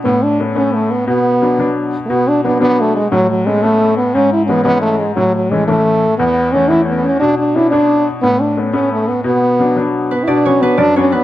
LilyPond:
<<
  \new Staff \with { instrumentName = "Harp" } { \time 6/8 \key b \dorian \tempo 4. = 117 r2. | r2. | r2. | r2. |
r2. | r2. | r2. | r2. |
r2. | r2 r8 b'8 | d''8 cis''8 b'8 d''8 cis''8 b'8 | }
  \new Staff \with { instrumentName = "French horn" } { \time 6/8 \key b \dorian b8 d'8 r8 cis'8 a8 b8 | b2 r8. r32 a32 | b8 d'8 b8 b8 a8 gis8 | fis8 fis8 gis8 a4 b8 |
cis'8 e'16. cis'32 b8 b8 a8 gis8 | fis8 fis8 gis8 a4. | b4 cis'8 e'16. cis'32 b8 cis'8 | d'8 d'8 e'8 d'4~ d'32 r16. |
b8 d'8 r8 cis'8 a8 b8 | b2 r8 b16. e'32 | d'8 cis'8 b8 d'8 cis'8 b8 | }
  \new Staff \with { instrumentName = "Grand piano" } { \time 6/8 \key b \dorian a,4 <a b cis'>8 <a b cis'>4 r8 | b,4 <fis b d'>8 <fis b d'>4 r8 | b,4 <fis b d'>8 <fis b d'>4 r8 | a,4 <a b cis'>8 <a b cis'>4 r8 |
gis,4 <e gis cis'>8 <e gis cis'>4 r8 | a,4 <e a cis'>8 <e a cis'>4 r8 | e,4 <e a cis'>8 <e a cis'>4 r8 | b,4 <b cis' d'>8 <b d' cis''>4 r8 |
a,4 <a b cis'>8 <a b cis'>4 r8 | b,4 <fis b d'>8 <fis b d'>4 r8 | b,8 <fis b d'>8 <fis b d'>8 fis,8 <fis b d'>8 <fis b d'>8 | }
>>